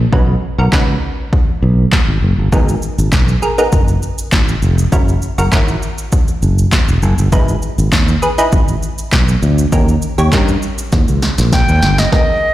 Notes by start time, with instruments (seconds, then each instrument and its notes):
0.12 fingered electric bass B1, synth stab C#4 D#4 F#4 B4, kick
0.58 fingered electric bass B1, synth stab F#4 A#4
0.72 fingered electric bass C#2, synth stab C#4 D#4 F#4 B4, kick, snare, clap
1.33 kick
1.62 fingered electric bass B1
1.92 kick, snare, clap
2.08 fingered electric bass G#1
2.22 fingered electric bass F#1
2.38 fingered electric bass G1
2.52 fingered electric bass G#1, synth stab B3 D#4 G#4 A#4, kick, shaker
2.69 shaker
2.82 shaker
2.98 fingered electric bass G#1, shaker
3.12 fingered electric bass B1, kick, snare, clap, shaker
3.28 shaker
3.42 synth stab G#4 A#4, shaker
3.58 synth stab B3 D#4 G#4 A#4, shaker
3.72 fingered electric bass F#1, kick, shaker
3.88 shaker
4.03 shaker
4.18 shaker
4.32 fingered electric bass G#1, kick, snare, clap, shaker
4.48 shaker
4.62 fingered electric bass F1, shaker
4.78 shaker
4.92 fingered electric bass F#1, synth stab C#4 E4 F#4 A#4, kick, shaker
5.08 shaker
5.22 shaker
5.38 fingered electric bass F#1, synth stab F#4 A#4, shaker
5.52 fingered electric bass G#1, synth stab C#4 E4 F#4 A#4, kick, snare, clap, shaker
5.68 shaker
5.82 shaker
5.98 shaker
6.12 kick, shaker
6.28 shaker
6.42 fingered electric bass F#1, shaker
6.58 shaker
6.72 kick, snare, clap, shaker
6.88 fingered electric bass E1, shaker
7.02 fingered electric bass F#1, shaker
7.18 fingered electric bass G1, shaker
7.32 fingered electric bass G#1, synth stab D#4 E4 G#4 B4, kick, shaker
7.48 shaker
7.62 shaker
7.78 fingered electric bass G#1, shaker
7.92 fingered electric bass D#2, kick, snare, clap, shaker
8.08 shaker
8.22 synth stab G#4 B4, shaker
8.38 synth stab D#4 E4 G#4 B4, shaker
8.52 fingered electric bass G#1, kick, shaker
8.68 shaker
8.83 shaker
8.98 shaker
9.12 fingered electric bass B1, kick, snare, clap, shaker
9.28 shaker
9.42 fingered electric bass D2, shaker
9.58 shaker
9.72 fingered electric bass D#2, synth stab C#4 D#4 G4 A#4, kick, shaker
9.88 shaker
10.02 shaker
10.18 fingered electric bass D#2, synth stab G4 C#5, shaker
10.32 fingered electric bass G2, synth stab C#4 D#4 G4 A#4, kick, snare, clap, shaker
10.48 shaker
10.62 shaker
10.78 shaker
10.92 fingered electric bass D#2, kick, snare, shaker
11.08 fingered electric bass C#2, shaker
11.22 snare, shaker
11.38 fingered electric bass A#1, snare, shaker
11.52 recorder G5, kick, snare, shaker
11.68 fingered electric bass D#2, shaker
11.82 fingered electric bass G1, snare, shaker
11.98 recorder D#5, snare, shaker
12.12 synth stab B3 D#4 G#4 A#4, recorder D#5, kick, snare